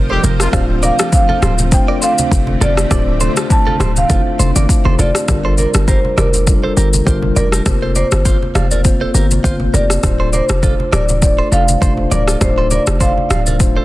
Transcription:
Already playing: 808-style bass F1, ambient pad F3 F4 A#4 C5, tine electric piano C4 F4 A#4
0.09 horn section G3 D#4 G4, clean electric guitar A4 C5, high conga
0.23 808-style bass F1, clean electric guitar G4 A#4, high conga, low conga, shaker
0.40 horn section C3 A#3 F4, cross-stick, shaker
0.52 808-style bass D1, ambient pad D3 A3 C4, tine electric piano A3 C4 D4 F4 C5, clean electric guitar D5 F5, kick, cross-stick, low conga, shaker
0.83 clean electric guitar A#4 D5, marimba F5, high conga, shaker
0.99 clean electric guitar F4 A4, cross-stick, shaker
1.13 marimba F5, kick, shaker
1.29 clean electric guitar F4 A4, high conga
1.42 808-style bass D1, clean electric guitar A4 C5, cross-stick, low conga, shaker
1.58 high conga, shaker
1.71 tine electric piano A3 C4 D4 F4 C5, marimba G5, kick, shaker
1.88 clean electric guitar A#4 D5
2.02 clean electric guitar A4 C5, marimba F5, shaker
2.18 high conga, shaker
2.31 808-style bass F1, kick, shaker
2.47 high conga
2.61 808-style bass F1, clean electric guitar F4 A4, marimba D5, high conga, low conga, shaker
2.77 cross-stick, shaker
2.89 808-style bass D1, tine electric piano A3 C4 D4 F4 C5, clean electric guitar A4 D5, kick, cross-stick, low conga, shaker
3.20 clean electric guitar A4 C5, high conga, shaker
3.37 clean electric guitar F4 A4, cross-stick, shaker
3.50 marimba A5, kick, shaker
3.67 clean electric guitar F4 A4, high conga
3.80 808-style bass D1, clean electric guitar A4 C5, cross-stick, low conga, shaker
3.96 marimba F5, high conga, shaker
4.09 808-style bass F1, tine electric piano A3 C4 D4 E4 C5, clean electric guitar F4 A4, kick, shaker
4.17 tine electric piano F4
4.39 808-style bass F1, clean electric guitar A4 C5, high conga, shaker
4.56 808-style bass G1, clean electric guitar A#4 D5, high conga, shaker
4.69 kick, shaker
4.85 808-style bass F1, clean electric guitar A4 C5, high conga
4.99 808-style bass F1, clean electric guitar F4 A4, marimba D5, high conga, low conga, shaker
5.15 cross-stick, shaker
5.27 808-style bass G1, tine electric piano G3 D4 F4 A#4, kick, cross-stick, low conga, shaker
5.45 clean electric guitar A4 C5
5.58 clean electric guitar A#4 D5, marimba A#4, high conga, shaker
5.74 808-style bass G1, cross-stick, shaker
5.88 clean electric guitar G4 A#4, marimba C5, kick, shaker
6.05 high conga
6.17 808-style bass F1, clean electric guitar A#4 D5, marimba A#4, cross-stick, low conga, shaker
6.34 high conga, shaker
6.46 tine electric piano G3 D4 F4 A4, kick, shaker
6.55 tine electric piano A#4
6.63 clean electric guitar A4 C5
6.77 808-style bass G1, clean electric guitar G4 A#4, shaker
6.93 high conga, shaker
7.05 808-style bass G1, tine electric piano G3 D4 F4 A#4, clean electric guitar G4 C5, kick, shaker
7.22 high conga
7.36 808-style bass F1, clean electric guitar A#4 D5, marimba A#4, high conga, low conga, shaker
7.52 clean electric guitar G4 A#4, cross-stick, shaker
7.65 808-style bass F1, tine electric piano A#3 C4 F4 C5, kick, cross-stick, low conga, shaker
7.82 clean electric guitar A4 C5
7.95 clean electric guitar A#4 D5, marimba C5, high conga, shaker
8.12 808-style bass G1, cross-stick, shaker
8.25 clean electric guitar F4 C5, kick, shaker
8.42 high conga
8.55 808-style bass F1, clean electric guitar D5 F5, cross-stick, low conga, shaker
8.71 clean electric guitar A#4 D5, high conga, shaker
8.84 tine electric piano A#3 C4 F4 C5, kick, shaker
9.01 clean electric guitar A4 C5
9.14 808-style bass G1, clean electric guitar G4 A#4, shaker
9.31 high conga, shaker
9.43 808-style bass G1, tine electric piano A#3 C4 F4 C5, clean electric guitar F4 C5, kick, shaker
9.60 high conga
9.74 808-style bass F1, clean electric guitar G4 A#4, marimba D5, high conga, low conga, shaker
9.90 cross-stick, shaker
10.02 808-style bass D1, tine electric piano A3 D4 F4 C5, kick, cross-stick, low conga, shaker
10.20 clean electric guitar A4 C5
10.33 clean electric guitar A#4 D5, marimba C5, high conga, shaker
10.49 808-style bass F1, cross-stick, shaker
10.63 clean electric guitar F4 A4, kick, shaker
10.80 high conga
10.93 808-style bass D1, clean electric guitar A#4 D5, marimba D5, cross-stick, low conga, shaker
11.09 high conga, shaker
11.21 tine electric piano A3 D4 F4 C5, marimba D5, kick, shaker
11.39 clean electric guitar A4 C5
11.52 808-style bass F1, clean electric guitar F4 A4, marimba F5, shaker
11.68 high conga, shaker
11.80 808-style bass F1, tine electric piano A3 D4 F4 C5, clean electric guitar A4 C5, kick, shaker
11.97 high conga
12.11 808-style bass D1, clean electric guitar A#4 D5, marimba D5, high conga, low conga, shaker
12.28 clean electric guitar F4 A4, cross-stick, shaker
12.40 808-style bass D1, tine electric piano A3 D4 D#4 D5, marimba C5, kick, cross-stick, low conga, shaker
12.48 tine electric piano F4
12.58 clean electric guitar A4 C5
12.71 clean electric guitar A#4 D5, marimba D5, high conga, shaker
12.87 808-style bass F1, cross-stick, shaker
13.00 clean electric guitar A4 C5, marimba F5, kick, shaker
13.18 high conga
13.30 808-style bass D1, clean electric guitar D5 F5, cross-stick, low conga, shaker
13.46 clean electric guitar A#4 D5, high conga, shaker
13.59 tine electric piano A3 D4 F4 C5, kick, shaker
13.77 clean electric guitar A4 C5

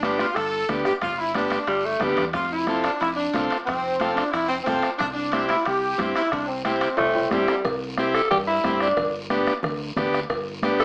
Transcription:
Already playing: fingered electric bass G1, saxophone section D4
0.03 transistor combo organ B3 D4 G4, bombo rim, high conga, high timbale, short guiro
0.18 saxophone section F4, bombo rim, high conga, high timbale, short guiro
0.35 fingered electric bass G1, saxophone section A4, bombo rim, high timbale, long guiro
0.69 fingered electric bass D2, transistor combo organ B3 D4 G4, bombo low, bombo rim, high conga, high timbale, short guiro
0.85 saxophone section G4, bombo rim, high timbale, short guiro
1.01 fingered electric bass G1, saxophone section F4, bombo low, bombo rim, high timbale, long guiro
1.18 saxophone section E4
1.34 transistor combo organ B3 D4 G4, saxophone section D4, bombo rim, high conga, high timbale, short guiro
1.50 bombo rim, high conga, high timbale, short guiro
1.67 fingered electric bass G1, tenor saxophone G3, bombo rim, high timbale, long guiro
1.85 tenor saxophone A3
2.00 fingered electric bass D2, tenor saxophone G3, transistor combo organ B3 D4 G4, bombo low, bombo rim, high conga, high timbale, low timbale, short guiro
2.17 fingered electric bass E2, bombo rim, high timbale, short guiro
2.33 fingered electric bass F1, saxophone section F4, bombo low, bombo rim, high timbale, long guiro
2.52 saxophone section E4
2.67 transistor combo organ C4 F4 A4, bombo rim, high conga, high timbale, short guiro
2.84 saxophone section D4, bombo rim, high timbale, short guiro
3.00 fingered electric bass F1, saxophone section E4, bombo rim, high timbale, long guiro
3.16 saxophone section D4
3.34 fingered electric bass C2, transistor combo organ C4 F4 A4, bombo low, bombo rim, high conga, high timbale, short guiro
3.50 bombo rim, high timbale, short guiro
3.65 fingered electric bass F1, saxophone section C4, bombo low, bombo rim, high timbale, long guiro
4.00 transistor combo organ C4 F4 A4, bombo rim, high conga, high timbale, short guiro
4.15 saxophone section D4, bombo rim, high timbale, short guiro
4.31 fingered electric bass F1, saxophone section E4, bombo rim, high timbale, long guiro
4.48 saxophone section C4
4.64 fingered electric bass C2, saxophone section C4, transistor combo organ C4 F4, bombo low, bombo rim, high conga, high timbale, low timbale, short guiro
4.68 transistor combo organ A4
4.82 bombo rim, high timbale, short guiro
4.98 fingered electric bass C2, saxophone section D4, bombo low, bombo rim, high timbale, long guiro
5.13 saxophone section D4
5.32 transistor combo organ C4 E4 G4, bombo rim, high conga, high timbale, short guiro
5.48 saxophone section E4, bombo rim, high conga, high timbale, short guiro
5.64 fingered electric bass C2, saxophone section G4, bombo rim, high timbale, long guiro
5.98 fingered electric bass G2, transistor combo organ C4 E4 G4, bombo low, bombo rim, high conga, high timbale, short guiro
6.14 saxophone section E4, bombo rim, high timbale, short guiro
6.31 fingered electric bass C2, saxophone section D4, bombo low, bombo rim, high timbale, long guiro
6.47 saxophone section C4
6.64 saxophone section C4, transistor combo organ C4 E4 G4, bombo rim, high conga, high timbale, short guiro
6.81 bombo rim, high timbale, short guiro
6.97 fingered electric bass C2, tenor saxophone A3, bombo rim, high timbale, long guiro
7.15 high timbale
7.30 fingered electric bass G2, tenor saxophone G3, transistor combo organ C4 E4 G4, bombo low, bombo rim, high conga, low timbale, short guiro
7.48 bombo rim, low timbale, short guiro
7.65 fingered electric bass C2, bombo low, bombo rim, cowbell, long guiro
7.98 transistor combo organ C4 E4 G4, bombo rim, cowbell, high conga, short guiro
8.14 tenor saxophone A4, bombo rim, short guiro
8.30 fingered electric bass G2, tenor saxophone G4, bombo rim, cowbell, low conga, long guiro
8.47 tenor saxophone E4
8.64 fingered electric bass G2, transistor combo organ C4 E4 G4, bombo low, bombo rim, cowbell, high conga, low timbale, short guiro
8.80 tenor saxophone D4, bombo rim, short guiro
8.97 fingered electric bass G1, bombo low, bombo rim, cowbell, low conga, long guiro
9.30 transistor combo organ B3 D4 G4, bombo rim, cowbell, high conga, short guiro
9.47 bombo rim, high conga, short guiro
9.63 fingered electric bass D2, bombo rim, cowbell, low conga, long guiro
9.96 fingered electric bass D2, transistor combo organ B3 D4 G4, bombo low, bombo rim, cowbell, high conga, low conga, short guiro
10.13 bombo rim, short guiro
10.30 fingered electric bass G1, bombo low, bombo rim, cowbell, long guiro
10.62 transistor combo organ B3 D4 G4, bombo rim, cowbell, high conga, short guiro
10.79 tenor saxophone A4, bombo rim, short guiro

